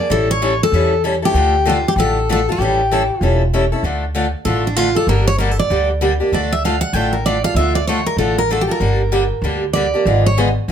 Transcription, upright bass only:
0.10 0.60 A1 medium
0.72 1.22 E2 medium
1.34 1.84 D2 medium
1.96 2.46 A1 medium
2.58 3.08 A1 medium
3.21 3.71 E1 medium
3.83 4.33 D2 medium
4.45 4.95 A1 medium
5.07 5.57 G1 medium
5.70 6.20 D2 medium
6.32 6.82 D2 medium
6.93 7.43 A1 medium
7.55 8.05 D2 medium
8.17 8.67 A1 medium
8.80 9.30 G1 medium
9.42 9.92 D2 medium
10.05 10.55 G#1 medium
10.68 10.72 D2 medium

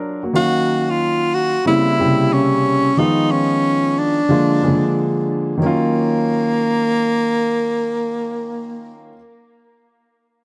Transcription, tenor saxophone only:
0.36 0.91 F#4 loud
0.90 1.36 F4 loud
1.34 1.67 F#4 loud
1.67 2.35 E4 loud
2.33 3.00 C#4 loud
2.99 3.33 D#4 loud
3.31 4.00 C#4 medium
3.98 5.29 D4 medium
5.63 9.02 A#3 loud

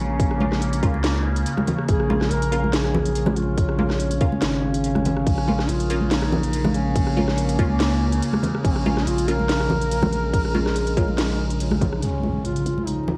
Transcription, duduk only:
0.00 0.79 C#4 medium
1.89 2.32 G#4 loud
2.31 2.75 A#4 loud
2.73 3.38 G#4 loud
3.37 4.21 F4 medium
5.27 5.70 C#4 medium
5.69 6.13 F4 medium
6.11 6.76 D#4 medium
6.75 8.44 C#4 loud
8.65 8.73 C#4 medium
8.72 8.81 C4 medium
8.80 9.09 C#4 loud
9.07 9.30 F4 loud
9.29 11.61 A#4 loud
11.96 12.04 D#4 medium
12.02 12.44 C#4 medium
12.45 12.88 F4 loud
12.87 13.18 D#4 medium

